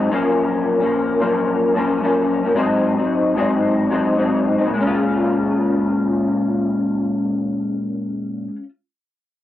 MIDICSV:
0, 0, Header, 1, 2, 480
1, 0, Start_track
1, 0, Key_signature, -5, "minor"
1, 0, Tempo, 541516
1, 340, Time_signature, 4, 2, 24, 8
1, 8362, End_track
2, 0, Start_track
2, 0, Title_t, "Clean electric guitar"
2, 0, Program_c, 0, 27
2, 0, Note_on_c, 0, 54, 56
2, 0, Note_on_c, 0, 60, 65
2, 0, Note_on_c, 0, 63, 65
2, 92, Note_on_c, 0, 42, 79
2, 98, Note_off_c, 0, 54, 0
2, 100, Note_off_c, 0, 60, 0
2, 101, Note_on_c, 0, 53, 86
2, 104, Note_on_c, 0, 58, 72
2, 108, Note_off_c, 0, 63, 0
2, 112, Note_on_c, 0, 61, 83
2, 697, Note_off_c, 0, 61, 0
2, 707, Note_off_c, 0, 42, 0
2, 708, Note_on_c, 0, 61, 50
2, 712, Note_off_c, 0, 53, 0
2, 714, Note_off_c, 0, 58, 0
2, 723, Note_on_c, 0, 58, 46
2, 735, Note_on_c, 0, 53, 41
2, 1057, Note_on_c, 0, 42, 58
2, 1058, Note_off_c, 0, 53, 0
2, 1058, Note_off_c, 0, 61, 0
2, 1065, Note_off_c, 0, 58, 0
2, 1069, Note_on_c, 0, 53, 61
2, 1078, Note_on_c, 0, 58, 61
2, 1087, Note_on_c, 0, 61, 62
2, 1528, Note_off_c, 0, 42, 0
2, 1539, Note_on_c, 0, 42, 50
2, 1544, Note_off_c, 0, 53, 0
2, 1548, Note_off_c, 0, 58, 0
2, 1553, Note_off_c, 0, 61, 0
2, 1553, Note_on_c, 0, 53, 57
2, 1562, Note_on_c, 0, 58, 66
2, 1570, Note_on_c, 0, 61, 64
2, 1766, Note_off_c, 0, 42, 0
2, 1777, Note_on_c, 0, 42, 61
2, 1780, Note_off_c, 0, 53, 0
2, 1790, Note_off_c, 0, 58, 0
2, 1790, Note_on_c, 0, 53, 57
2, 1795, Note_off_c, 0, 61, 0
2, 1801, Note_on_c, 0, 58, 57
2, 1805, Note_on_c, 0, 61, 69
2, 2141, Note_off_c, 0, 61, 0
2, 2150, Note_off_c, 0, 42, 0
2, 2152, Note_on_c, 0, 61, 44
2, 2157, Note_off_c, 0, 53, 0
2, 2159, Note_off_c, 0, 58, 0
2, 2170, Note_on_c, 0, 58, 46
2, 2184, Note_on_c, 0, 53, 40
2, 2256, Note_on_c, 0, 44, 72
2, 2259, Note_off_c, 0, 61, 0
2, 2262, Note_off_c, 0, 53, 0
2, 2265, Note_off_c, 0, 58, 0
2, 2266, Note_on_c, 0, 54, 75
2, 2268, Note_on_c, 0, 60, 82
2, 2279, Note_on_c, 0, 63, 85
2, 2615, Note_off_c, 0, 63, 0
2, 2626, Note_on_c, 0, 63, 45
2, 2629, Note_off_c, 0, 44, 0
2, 2630, Note_off_c, 0, 60, 0
2, 2634, Note_off_c, 0, 54, 0
2, 2640, Note_on_c, 0, 60, 40
2, 2654, Note_on_c, 0, 54, 41
2, 2969, Note_on_c, 0, 44, 51
2, 2972, Note_off_c, 0, 54, 0
2, 2976, Note_off_c, 0, 63, 0
2, 2981, Note_off_c, 0, 60, 0
2, 2983, Note_on_c, 0, 54, 53
2, 2992, Note_on_c, 0, 60, 61
2, 3001, Note_on_c, 0, 63, 64
2, 3443, Note_off_c, 0, 44, 0
2, 3453, Note_off_c, 0, 54, 0
2, 3454, Note_on_c, 0, 44, 51
2, 3462, Note_off_c, 0, 60, 0
2, 3463, Note_on_c, 0, 54, 61
2, 3470, Note_off_c, 0, 63, 0
2, 3473, Note_on_c, 0, 60, 63
2, 3482, Note_on_c, 0, 63, 55
2, 3680, Note_off_c, 0, 44, 0
2, 3691, Note_on_c, 0, 44, 53
2, 3692, Note_off_c, 0, 54, 0
2, 3702, Note_off_c, 0, 60, 0
2, 3702, Note_on_c, 0, 54, 51
2, 3710, Note_off_c, 0, 63, 0
2, 3713, Note_on_c, 0, 60, 58
2, 3721, Note_on_c, 0, 63, 58
2, 4050, Note_off_c, 0, 63, 0
2, 4061, Note_on_c, 0, 63, 43
2, 4066, Note_off_c, 0, 44, 0
2, 4071, Note_off_c, 0, 60, 0
2, 4072, Note_off_c, 0, 54, 0
2, 4081, Note_on_c, 0, 60, 41
2, 4092, Note_on_c, 0, 54, 32
2, 4126, Note_on_c, 0, 46, 67
2, 4173, Note_off_c, 0, 63, 0
2, 4184, Note_off_c, 0, 60, 0
2, 4189, Note_off_c, 0, 54, 0
2, 4199, Note_on_c, 0, 56, 67
2, 4261, Note_on_c, 0, 61, 76
2, 4316, Note_on_c, 0, 65, 85
2, 7509, Note_off_c, 0, 46, 0
2, 7582, Note_off_c, 0, 56, 0
2, 7643, Note_off_c, 0, 61, 0
2, 7698, Note_off_c, 0, 65, 0
2, 8362, End_track
0, 0, End_of_file